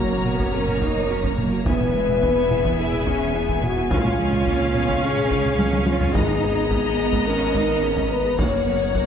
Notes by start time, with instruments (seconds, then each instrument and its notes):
Already playing: detuned saw bass F#1, double bass section F#2, cello section A#3, viola section A#3, french horn section F#4, violin section C#5 A#5
0.12 synth arpeggio sound C#4
0.25 cello section B3, synth arpeggio sound F#4, taiko mid
0.39 synth arpeggio sound F#3, taiko
0.54 cello section C#4, synth arpeggio sound F#4, french horn section A#4
0.68 taiko mid
0.82 synth arpeggio sound F#3, cello section D#4, taiko
1.10 cello section C#4, synth arpeggio sound F#4
1.24 synth arpeggio sound F#3, taiko
1.38 cello section A#3, taiko mid
1.53 synth arpeggio sound F#4
1.66 detuned saw bass E1, double bass section E2, synth arpeggio sound E3, viola section B3, cello section B3, french horn section B4, violin section E5 G#5, taiko
1.81 synth arpeggio sound B3, taiko mid
1.95 cello section G#3, synth arpeggio sound G#3
2.09 taiko mid
2.22 synth arpeggio sound E3, cello section B3, taiko
2.37 synth arpeggio sound B3
2.51 synth arpeggio sound E4, taiko mid
2.65 synth arpeggio sound E3, taiko
2.78 cello section E4, synth arpeggio sound E4, french horn section G#4
2.93 taiko mid
3.06 synth arpeggio sound E3, cello section C#4, taiko
3.35 cello section B3, synth arpeggio sound E4
3.49 synth arpeggio sound E3, taiko
3.63 french horn section F#4, taiko mid
3.77 synth arpeggio sound E4
3.91 double bass section C#2, detuned saw bass C#2, synth arpeggio sound C#3, cello section A#3, viola section C#4, french horn section F4, violin section F5, taiko
4.05 synth arpeggio sound G#3, taiko mid
4.18 synth arpeggio sound F3, cello section G#3
4.33 taiko mid
4.46 synth arpeggio sound C#3, cello section A#3, taiko
4.61 synth arpeggio sound G#3
4.75 cello section B3, synth arpeggio sound C#4, taiko mid
4.89 synth arpeggio sound C#3, taiko
5.03 cello section C#4, synth arpeggio sound C#4, french horn section G#4
5.17 taiko mid
5.31 synth arpeggio sound C#3, taiko
5.45 taiko mid
5.58 cello section C#4, synth arpeggio sound C#4, taiko high
5.73 synth arpeggio sound C#3, taiko high
5.86 french horn section F4, taiko high
6.01 synth arpeggio sound C#4, taiko low
6.14 double bass section G#1, detuned saw bass G#1, synth arpeggio sound G#3, viola section B3, cello section D#4, french horn section G#4, violin section D#5 A#5, taiko
6.29 synth arpeggio sound D#4
6.43 synth arpeggio sound B3
6.70 synth arpeggio sound G#3, cello section B3, taiko
6.85 synth arpeggio sound D#4
6.99 synth arpeggio sound G#4
7.12 synth arpeggio sound G#3, taiko
7.26 cello section C#4, synth arpeggio sound G#4, french horn section A#4
7.55 synth arpeggio sound G#3, cello section D#4, taiko
7.82 cello section C#4, synth arpeggio sound G#4
7.97 synth arpeggio sound G#3, taiko
8.10 cello section B3, french horn section B4
8.25 synth arpeggio sound G#4
8.38 detuned saw bass F#1, double bass section F#1, synth arpeggio sound F#3, cello section A#3, viola section A#3, french horn section C#5, violin section C#5 F#5, taiko
8.53 synth arpeggio sound C#4
8.67 synth arpeggio sound A#3, cello section B3
8.94 synth arpeggio sound F#3, cello section A#3, taiko